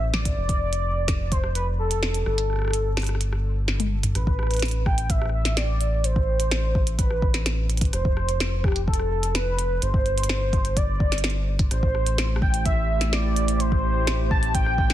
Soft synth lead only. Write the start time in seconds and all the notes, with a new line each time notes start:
Already playing: E5
0.14 D5
1.32 C5
1.55 B4
1.79 A4
2.26 A4
4.15 B4
4.86 G5
5.10 E5
5.33 E5
5.57 D5
6.04 C5
6.99 B4
7.93 C5
8.64 G4
8.88 A4
9.11 A4
9.35 B4
9.82 C5
10.77 D5
11.71 C5
12.42 G5
12.66 E5
12.89 E5
13.13 D5
13.60 C5
14.31 A5
14.54 G5
14.78 G5